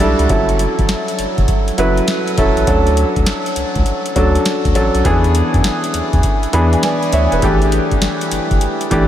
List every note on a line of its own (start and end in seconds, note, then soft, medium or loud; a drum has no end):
0.00 0.15 B1 loud
0.00 0.32 G3 medium
0.00 0.32 D4 medium
0.00 0.30 E4 medium
0.00 0.31 F#4 medium
0.00 0.24 A4 medium
0.00 closed hi-hat medium
0.19 0.27 C#2 medium
0.19 closed hi-hat medium
0.29 0.67 F#1 loud
0.29 1.16 F#3 medium
0.29 1.16 C#4 medium
0.29 1.16 E4 medium
0.29 1.16 A4 medium
0.29 kick loud
0.29 closed hi-hat medium
0.49 closed hi-hat medium
0.59 closed hi-hat medium
0.79 0.86 A1 medium
0.79 kick medium
0.79 closed hi-hat soft
0.89 snare loud
0.89 closed hi-hat medium
1.08 closed hi-hat medium
1.19 1.26 F#1 soft
1.19 closed hi-hat medium
1.38 1.46 F#1 medium
1.38 kick medium
1.38 closed hi-hat soft
1.48 kick medium
1.48 closed hi-hat medium
1.68 closed hi-hat medium
1.78 2.01 F#1 medium
1.78 2.24 F#3 medium
1.78 2.24 C#4 medium
1.78 2.25 E4 medium
1.78 2.25 B4 medium
1.78 closed hi-hat medium
1.97 closed hi-hat soft
2.08 snare loud
2.08 closed hi-hat medium
2.27 closed hi-hat soft
2.37 2.52 E1 medium
2.37 2.61 F#3 medium
2.37 2.61 C#4 medium
2.37 2.62 E4 medium
2.37 2.62 A4 medium
2.37 kick medium
2.37 closed hi-hat medium
2.57 2.65 A1 medium
2.57 closed hi-hat medium
2.67 3.04 D2 loud
2.67 3.53 F#3 medium
2.67 3.53 C#4 medium
2.67 3.54 D4 medium
2.67 3.54 A4 medium
2.67 kick loud
2.67 closed hi-hat medium
2.87 closed hi-hat medium
2.97 closed hi-hat medium
3.16 3.24 D2 medium
3.16 kick medium
3.16 closed hi-hat soft
3.26 snare loud
3.26 closed hi-hat medium
3.46 closed hi-hat medium
3.56 3.64 C#2 soft
3.56 closed hi-hat medium
3.75 3.83 C#2 medium
3.75 kick medium
3.75 closed hi-hat soft
3.86 closed hi-hat medium
4.06 closed hi-hat medium
4.16 4.38 D2 loud
4.16 4.62 F#3 medium
4.16 4.62 C#4 medium
4.16 4.62 D4 medium
4.16 4.63 A4 medium
4.16 kick medium
4.16 closed hi-hat medium
4.35 closed hi-hat soft
4.46 snare loud
4.46 closed hi-hat medium
4.65 4.73 D2 medium
4.65 kick medium
4.65 closed hi-hat medium
4.75 4.90 A1 medium
4.75 4.99 F#3 medium
4.75 4.99 C#4 medium
4.75 4.99 D4 medium
4.75 4.99 A4 medium
4.75 closed hi-hat medium
4.95 5.02 B1 medium
4.95 closed hi-hat medium
5.05 5.42 E2 loud
5.05 5.91 E3 medium
5.05 5.91 B3 medium
5.05 5.91 D4 medium
5.05 5.91 G#4 medium
5.05 kick loud
5.05 closed hi-hat medium
5.24 closed hi-hat medium
5.35 closed hi-hat medium
5.54 5.62 F#2 medium
5.54 kick medium
5.54 closed hi-hat soft
5.64 snare loud
5.64 closed hi-hat medium
5.84 closed hi-hat medium
5.94 6.02 E2 soft
5.94 closed hi-hat medium
6.13 6.21 E2 medium
6.13 kick medium
6.13 closed hi-hat soft
6.23 kick medium
6.23 closed hi-hat medium
6.43 closed hi-hat medium
6.53 6.76 E2 loud
6.53 7.00 E3 medium
6.53 7.00 B3 medium
6.53 7.00 D4 medium
6.53 6.84 G#4 medium
6.53 6.72 B5 medium
6.53 closed hi-hat medium
6.73 6.82 G#5 medium
6.73 closed hi-hat soft
6.83 7.12 B4 medium
6.83 7.12 D5 medium
6.83 7.11 G#5 medium
6.83 snare loud
6.83 closed hi-hat medium
7.03 closed hi-hat medium
7.13 7.28 D2 loud
7.13 7.31 C#5 medium
7.13 7.41 E5 medium
7.13 closed hi-hat medium
7.32 7.40 E1 loud
7.32 7.61 G#4 medium
7.32 7.61 B4 medium
7.32 closed hi-hat medium
7.42 7.80 A1 loud
7.42 8.29 E3 medium
7.42 8.29 A3 medium
7.42 8.29 D4 medium
7.42 8.29 G4 medium
7.42 kick loud
7.42 closed hi-hat medium
7.62 closed hi-hat medium
7.72 closed hi-hat medium
7.91 7.99 A1 medium
7.91 kick medium
7.91 closed hi-hat soft
8.02 snare loud
8.02 closed hi-hat medium
8.21 closed hi-hat medium
8.31 8.39 G1 soft
8.31 closed hi-hat medium
8.51 8.59 G1 medium
8.51 kick medium
8.51 closed hi-hat soft
8.61 closed hi-hat medium
8.81 closed hi-hat medium
8.91 9.08 A1 loud
8.91 9.08 E3 medium
8.91 9.08 A3 medium
8.91 9.08 D4 medium
8.91 9.08 G4 medium
8.91 kick medium
8.91 closed hi-hat medium